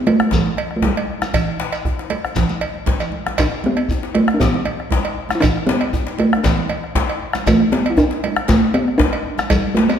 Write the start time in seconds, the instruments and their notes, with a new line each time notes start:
0.07 talking drum A3, cowbell, high conga
0.20 bombo rim, djembe tone, high conga
0.27 talking drum A3
0.31 talking drum G3, bombo rim, bombo low, djembe slap, djembe bass, low conga, shekere
0.46 high conga
0.57 bombo rim, cowbell, high conga
0.71 bombo rim
0.76 talking drum A3
0.82 talking drum G3, bombo low, djembe slap, high conga, djembe bass
0.97 cowbell
1.22 bombo rim, djembe slap, djembe tone, high conga, shekere
1.34 bombo rim, bombo low, cowbell, high conga, djembe bass, low conga, shekere
1.47 high conga
1.60 bombo rim, djembe slap
1.73 cowbell, shekere
1.85 bombo rim, bombo low, high conga, djembe bass
1.99 bombo rim, djembe slap
2.10 cowbell, high conga
2.25 bombo rim, djembe tone
2.35 bombo low, djembe slap, high conga, low conga, djembe bass, shekere
2.49 high conga, shekere
2.61 cowbell
2.74 djembe slap, high conga
2.86 bombo low, djembe slap, high conga, djembe bass
2.99 bombo rim, cowbell, low conga, shekere
3.12 high conga
3.26 bombo rim, djembe slap, high conga, djembe tone
3.38 talking drum D4, bombo low, cowbell, high conga, low conga, djembe bass, shekere
3.52 bombo rim
3.64 talking drum B3, high conga
3.77 cowbell, djembe slap
3.89 bombo low, djembe bass, shekere
4.03 djembe slap
4.15 talking drum A3, cowbell, high conga
4.28 bombo rim, high conga, djembe tone
4.34 talking drum D4
4.40 talking drum B3, bombo rim, bombo low, djembe slap, low conga, djembe bass, shekere
4.54 high conga
4.65 bombo rim, cowbell, high conga
4.80 bombo rim
4.91 bombo low, djembe slap, high conga, djembe bass
5.05 cowbell
5.29 bombo rim, djembe slap, high conga, djembe tone, shekere
5.35 talking drum E4
5.40 talking drum D4, bombo low, cowbell, high conga, low conga, djembe bass, shekere
5.57 bombo rim
5.67 talking drum B3, djembe slap, high conga
5.81 cowbell, djembe slap
5.93 bombo low, djembe bass, shekere
6.07 djembe slap
6.19 talking drum A3, cowbell, high conga
6.32 bombo rim, high conga, djembe tone
6.37 talking drum D4
6.43 talking drum B3, bombo rim, bombo low, djembe slap, djembe bass, low conga, shekere
6.58 high conga
6.69 bombo rim, cowbell, high conga
6.84 bombo rim
6.95 bombo low, djembe slap, high conga, djembe bass
7.09 cowbell
7.33 bombo rim, djembe slap, high conga, djembe tone, shekere
7.46 talking drum A3, bombo low, cowbell, high conga, djembe bass, low conga, shekere
7.60 bombo rim
7.72 talking drum B3, djembe slap, high conga
7.85 cowbell, djembe slap
7.90 talking drum E4
7.97 talking drum D4, bombo low, djembe bass, shekere
8.11 djembe slap
8.24 cowbell, high conga
8.36 bombo rim, djembe tone
8.48 talking drum A3, bombo rim, bombo low, djembe slap, low conga, djembe bass, shekere
8.74 talking drum B3, bombo rim, cowbell, high conga
8.88 bombo rim
8.98 talking drum D4, bombo low, djembe slap, high conga, djembe bass
9.13 cowbell
9.38 bombo rim, djembe slap, high conga, djembe tone, shekere
9.50 talking drum G3, bombo low, cowbell, djembe slap, low conga, djembe bass, shekere
9.64 high conga
9.75 talking drum A3, djembe slap, high conga
9.89 talking drum B3, cowbell, djembe slap, shekere